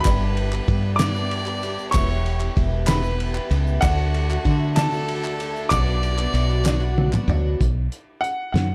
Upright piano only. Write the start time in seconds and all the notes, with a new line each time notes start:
0.00 B5
0.96 D6
1.91 C#6
2.87 B5
3.81 F#5
4.76 A5
5.69 D6
8.21 F#5
8.52 F#5